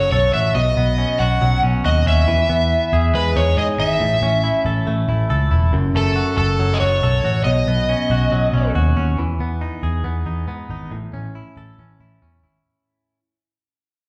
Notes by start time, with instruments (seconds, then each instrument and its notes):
Already playing: clean electric guitar F#2 F#3 A3 F#4 A4, lead electric guitar C#5
0.11 picked electric bass B1, clean electric guitar A4, lead electric guitar C#5
0.34 picked electric bass A1, clean electric guitar F#4, lead electric guitar E5
0.55 picked electric bass B1, clean electric guitar B2, lead electric guitar D#5
0.77 picked electric bass B1, clean electric guitar B3
0.98 clean electric guitar C#4
1.19 picked electric bass B1, clean electric guitar F#4, lead electric guitar F#5
1.42 picked electric bass B1, clean electric guitar F#3
1.63 picked electric bass B1, clean electric guitar C#4
1.85 picked electric bass D#2, clean electric guitar F#4, lead electric guitar D#5
2.06 picked electric bass D#2, clean electric guitar C#4, lead electric guitar E5
2.28 picked electric bass E2, clean electric guitar E3
2.49 picked electric bass E2, clean electric guitar B3
2.93 picked electric bass E2, clean electric guitar G#4
3.14 picked electric bass E2, clean electric guitar G#3, lead electric guitar B4
3.36 picked electric bass E2, clean electric guitar D#4, lead electric guitar C#5
3.57 picked electric bass G#2, clean electric guitar G#4, lead electric guitar D#5
3.79 picked electric bass G#1, clean electric guitar D#4, lead electric guitar E5
4.00 picked electric bass A1, clean electric guitar A2
4.22 picked electric bass A1, clean electric guitar C#4
4.44 clean electric guitar E4
4.65 picked electric bass A1, clean electric guitar A4
4.87 picked electric bass A1, clean electric guitar A3
5.08 picked electric bass A1, clean electric guitar E4
5.30 picked electric bass C#2, clean electric guitar A4
5.51 picked electric bass E1, clean electric guitar E4
5.73 picked electric bass F#1, clean electric guitar F#2
5.95 picked electric bass F#1, clean electric guitar A3, lead electric guitar A4
6.16 clean electric guitar F#4
6.37 picked electric bass F#1, lead electric guitar A4, clean electric guitar A4
6.59 picked electric bass F#1, clean electric guitar F#3
6.74 lead electric guitar D#5
6.80 picked electric bass F#1, clean electric guitar F#4, lead electric guitar C#5
7.02 picked electric bass B1, clean electric guitar A4
7.24 picked electric bass A1, clean electric guitar F#4
7.44 picked electric bass B1, clean electric guitar B2, lead electric guitar D#5
7.67 picked electric bass B1, clean electric guitar B3
7.89 clean electric guitar C#4
8.10 picked electric bass B1, clean electric guitar F#4
8.31 picked electric bass B1, clean electric guitar F#3
8.53 picked electric bass B1, clean electric guitar C#4
8.75 picked electric bass D#2, clean electric guitar F#4
8.96 picked electric bass D#2, clean electric guitar C#4
9.18 picked electric bass E2, clean electric guitar E3
9.39 picked electric bass E2, clean electric guitar B3
9.61 clean electric guitar D#4
9.83 picked electric bass E2, clean electric guitar G#4
10.04 picked electric bass E2, clean electric guitar B3
10.26 picked electric bass E2, clean electric guitar D#4
10.48 picked electric bass G#2, clean electric guitar B3
10.69 picked electric bass G#1, clean electric guitar D#4
10.91 picked electric bass A1, clean electric guitar A2
11.13 picked electric bass A1, clean electric guitar C#4
11.35 clean electric guitar E4
11.57 picked electric bass A1, clean electric guitar A4
11.78 picked electric bass A1, clean electric guitar C#4
12.00 picked electric bass A1, clean electric guitar E4
12.22 picked electric bass E2, clean electric guitar C#4
12.43 picked electric bass G#1, clean electric guitar E4